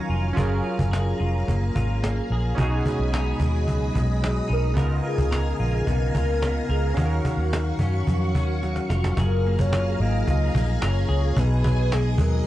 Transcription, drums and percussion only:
0.37 cajon bass loud
0.65 cajon slap soft
0.79 cajon bass medium
0.93 cajon slap loud
1.21 cajon slap soft
1.48 cajon bass medium
1.48 cajon slap soft
1.76 cajon bass medium
2.04 cajon slap loud
2.31 cajon slap soft
2.58 cajon bass loud
2.86 cajon bass loud
3.14 cajon slap loud
3.40 cajon bass medium
3.54 cajon slap soft
3.68 cajon bass medium
3.68 cajon slap soft
3.95 cajon bass medium
4.24 cajon slap loud
4.77 cajon bass loud
5.04 cajon slap soft
5.18 cajon bass medium
5.32 cajon slap loud
5.74 cajon slap soft
5.87 cajon bass medium
5.87 cajon slap soft
6.15 cajon bass medium
6.42 cajon slap loud
6.70 cajon slap soft
6.97 cajon bass loud
7.25 cajon bass medium
7.53 cajon slap loud
7.79 cajon bass medium
7.93 cajon slap soft
8.07 cajon bass medium
8.07 cajon slap soft
8.35 cajon bass medium
8.62 cajon slap soft
8.76 cajon slap medium
8.90 cajon slap medium
9.04 cajon slap medium
9.17 cajon bass loud
9.45 cajon slap soft
9.59 cajon bass medium
9.73 cajon slap loud
9.99 cajon slap soft
10.14 cajon slap soft
10.27 cajon bass medium
10.27 cajon slap soft
10.55 cajon bass loud
10.82 cajon slap loud
11.10 cajon slap soft
11.37 cajon bass loud
11.64 cajon bass loud
11.92 cajon slap loud
12.18 cajon bass loud
12.32 cajon slap soft

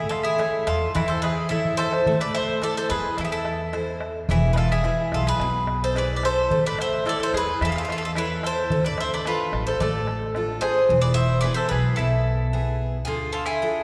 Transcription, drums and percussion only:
0.11 darbuka tek medium
0.39 darbuka tek medium
0.53 darbuka tek soft
0.67 darbuka tek medium
0.81 darbuka tek soft
0.96 darbuka tek medium
0.96 darbuka dum medium
1.24 darbuka tek medium
1.38 darbuka tek soft
1.51 darbuka dum soft
1.65 darbuka dum medium
1.78 darbuka tek medium
1.92 darbuka tek medium
2.06 darbuka dum medium
2.20 darbuka tek soft
2.34 darbuka tek medium
2.48 darbuka tek soft
2.62 darbuka tek medium
2.89 darbuka tek medium
3.04 darbuka tek soft
3.17 darbuka tek medium
3.45 darbuka tek medium
3.73 darbuka tek medium
4.00 darbuka tek medium
4.29 darbuka dum medium
4.42 darbuka tek soft
4.56 darbuka tek medium
4.70 darbuka tek soft
4.84 darbuka tek medium
5.12 darbuka tek medium
5.26 darbuka tek soft
5.40 darbuka tek medium
5.67 darbuka tek medium
5.96 darbuka tek medium
6.23 darbuka tek medium
6.51 darbuka dum medium
6.65 darbuka tek soft
6.79 darbuka tek medium
6.93 darbuka tek soft
7.06 darbuka tek medium
7.34 darbuka tek medium
7.48 darbuka tek soft
7.61 darbuka tek medium
7.89 darbuka tek medium
8.15 darbuka tek medium
8.43 darbuka tek medium
8.70 darbuka dum loud
8.84 darbuka tek soft
8.98 darbuka tek medium
9.12 darbuka tek soft
9.25 darbuka tek medium
9.53 darbuka tek medium
9.81 darbuka tek medium
9.81 darbuka dum medium
10.07 darbuka tek medium
10.21 darbuka tek soft
10.35 darbuka tek medium
10.48 darbuka tek soft
10.62 darbuka tek medium
10.75 darbuka tek soft

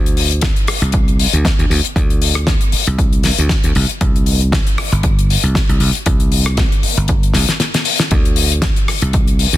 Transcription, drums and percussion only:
0.06 closed hi-hat medium
0.17 open hi-hat loud
0.31 closed hi-hat medium
0.41 kick loud
0.41 snare loud
0.41 closed hi-hat loud
0.56 closed hi-hat medium
0.67 cross-stick medium
0.67 open hi-hat loud
0.82 closed hi-hat soft
0.92 kick loud
0.92 closed hi-hat medium
1.08 closed hi-hat medium
1.19 open hi-hat loud
1.33 closed hi-hat medium
1.45 kick loud
1.45 snare loud
1.45 closed hi-hat medium
1.59 closed hi-hat medium
1.71 open hi-hat loud
1.85 closed hi-hat medium
1.96 kick loud
1.96 closed hi-hat medium
2.10 closed hi-hat medium
2.22 open hi-hat loud
2.35 cross-stick medium
2.35 closed hi-hat medium
2.47 kick loud
2.47 snare loud
2.47 closed hi-hat medium
2.61 closed hi-hat medium
2.72 open hi-hat loud
2.87 closed hi-hat medium
2.98 kick loud
2.98 closed hi-hat medium
3.13 closed hi-hat medium
3.23 snare medium
3.23 open hi-hat loud
3.38 closed hi-hat medium
3.49 kick loud
3.49 snare loud
3.49 closed hi-hat loud
3.64 closed hi-hat medium
3.75 open hi-hat loud
3.89 closed hi-hat medium
4.01 kick loud
4.01 closed hi-hat loud
4.16 closed hi-hat medium
4.26 open hi-hat loud
4.41 closed hi-hat soft
4.52 kick loud
4.52 snare loud
4.52 closed hi-hat loud
4.67 closed hi-hat medium
4.78 cross-stick medium
4.78 open hi-hat loud
4.93 closed hi-hat medium
5.03 kick loud
5.03 closed hi-hat loud
5.19 closed hi-hat medium
5.30 open hi-hat loud
5.44 closed hi-hat medium
5.55 kick loud
5.55 snare loud
5.55 closed hi-hat medium
5.69 closed hi-hat medium
5.80 open hi-hat loud
5.95 closed hi-hat medium
6.06 kick loud
6.06 closed hi-hat loud
6.20 closed hi-hat medium
6.32 open hi-hat loud
6.46 cross-stick medium
6.57 kick loud
6.57 snare loud
6.57 closed hi-hat loud
6.72 closed hi-hat medium
6.83 open hi-hat loud
6.97 closed hi-hat medium
7.08 kick loud
7.08 closed hi-hat medium
7.23 closed hi-hat medium
7.34 snare medium
7.34 open hi-hat loud
7.49 snare medium
7.49 closed hi-hat medium
7.60 snare medium
7.60 closed hi-hat medium
7.74 snare medium
7.74 closed hi-hat medium
7.85 open hi-hat loud
8.00 snare medium
8.00 closed hi-hat medium
8.11 kick loud
8.11 closed hi-hat medium
8.25 closed hi-hat medium
8.36 open hi-hat loud
8.52 closed hi-hat medium
8.62 kick loud
8.62 snare loud
8.62 closed hi-hat loud
8.76 closed hi-hat medium
8.88 cross-stick medium
8.88 open hi-hat loud
9.02 closed hi-hat medium
9.13 kick loud
9.13 closed hi-hat loud
9.28 closed hi-hat medium
9.39 open hi-hat loud
9.53 closed hi-hat medium

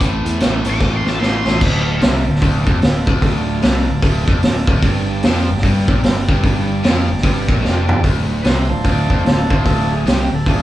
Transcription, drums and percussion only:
0.01 kick loud
0.01 closed hi-hat medium
0.26 closed hi-hat medium
0.40 snare loud
0.40 closed hi-hat medium
0.65 closed hi-hat medium
0.74 snare soft
0.81 kick loud
0.81 snare medium
1.06 snare medium
1.22 snare medium
1.47 snare medium
1.61 kick loud
1.61 crash loud
2.01 snare loud
2.01 open hi-hat medium
2.35 snare soft
2.42 kick loud
2.42 open hi-hat medium
2.67 kick loud
2.82 snare loud
2.82 open hi-hat medium
3.07 kick loud
3.22 kick loud
3.22 open hi-hat medium
3.62 snare loud
3.62 open hi-hat medium
3.76 snare soft
4.02 kick loud
4.02 open hi-hat medium
4.28 kick loud
4.43 snare loud
4.43 open hi-hat medium
4.67 kick loud
4.82 kick loud
4.82 open hi-hat medium
5.23 snare loud
5.23 open hi-hat medium
5.36 snare soft
5.57 snare soft
5.63 kick loud
5.63 open hi-hat medium
5.88 kick loud
6.03 snare loud
6.03 open hi-hat medium
6.29 kick loud
6.44 kick loud
6.44 open hi-hat medium
6.84 snare loud
6.84 open hi-hat medium
7.18 snare soft
7.23 kick loud
7.23 open hi-hat medium
7.49 kick loud
7.65 snare medium
7.89 floor tom loud
8.04 kick loud
8.04 open hi-hat medium
8.44 snare loud
8.44 open hi-hat medium
8.85 kick loud
8.85 open hi-hat medium
9.10 kick loud
9.26 snare loud
9.26 open hi-hat medium
9.50 kick loud
9.66 kick loud
9.66 open hi-hat medium
10.07 snare loud
10.07 open hi-hat medium
10.46 kick loud
10.46 open hi-hat medium

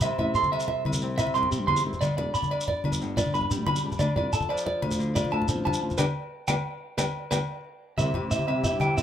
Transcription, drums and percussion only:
0.01 high conga medium
0.01 low agogo medium
0.01 shekere medium
0.19 low conga medium
0.19 low agogo medium
0.34 shekere medium
0.43 high conga medium
0.43 low conga medium
0.43 shekere soft
0.51 low conga soft
0.51 low agogo medium
0.60 shekere medium
0.68 low conga medium
0.85 high conga medium
0.85 low agogo medium
0.93 low conga medium
0.93 shekere medium
1.01 shekere soft
1.18 low conga medium
1.18 low agogo medium
1.18 shekere medium
1.27 high conga medium
1.34 low conga soft
1.34 low agogo medium
1.34 shekere soft
1.43 low conga medium
1.52 shekere medium
1.68 high conga medium
1.68 low conga medium
1.68 low agogo medium
1.76 shekere medium
1.93 low conga medium
1.93 shekere soft
2.01 high conga medium
2.01 low agogo medium
2.01 shekere medium
2.18 low conga medium
2.18 low agogo medium
2.34 shekere medium
2.43 high conga medium
2.43 low conga medium
2.43 shekere soft
2.51 low conga soft
2.51 low agogo medium
2.61 shekere medium
2.68 low conga medium
2.84 high conga medium
2.84 low agogo medium
2.92 low conga medium
2.92 shekere medium
3.01 shekere soft
3.17 low conga loud
3.17 low agogo medium
3.17 shekere medium
3.26 high conga medium
3.34 low conga soft
3.34 low agogo medium
3.34 shekere soft
3.41 low conga medium
3.51 shekere loud
3.66 high conga medium
3.66 low conga medium
3.66 low agogo medium
3.76 shekere medium
3.92 low conga medium
3.92 shekere soft
3.99 high conga loud
3.99 low agogo medium
3.99 shekere medium
4.16 low conga loud
4.16 low agogo medium
4.33 shekere medium
4.41 high conga medium
4.41 low conga medium
4.41 shekere soft
4.50 low conga soft
4.50 low agogo medium
4.57 shekere medium
4.67 low conga medium
4.82 high conga medium
4.82 low agogo medium
4.91 low conga medium
4.91 shekere medium
5.00 shekere soft
5.16 low conga medium
5.16 low agogo medium
5.16 shekere medium
5.25 high conga medium
5.32 low conga soft
5.32 low agogo medium
5.42 low conga medium
5.48 shekere loud
5.65 high conga medium
5.65 low conga medium
5.65 low agogo medium
5.73 shekere medium
5.90 low conga medium
5.90 shekere soft
5.98 high conga loud
5.98 low agogo medium
5.98 shekere medium
6.48 high conga medium
6.48 low agogo medium
6.48 shekere medium
6.98 high conga medium
6.98 low agogo medium
6.98 shekere loud
7.31 high conga medium
7.31 low agogo medium
7.31 shekere loud
7.98 high conga medium
7.98 low agogo medium
7.98 shekere medium
8.14 low conga medium
8.14 low agogo medium
8.31 shekere medium
8.39 high conga medium
8.39 low conga soft
8.47 low conga soft
8.47 low agogo medium
8.64 low conga medium
8.64 shekere loud
8.80 high conga medium
8.80 low agogo medium
8.80 shekere soft
8.98 shekere medium

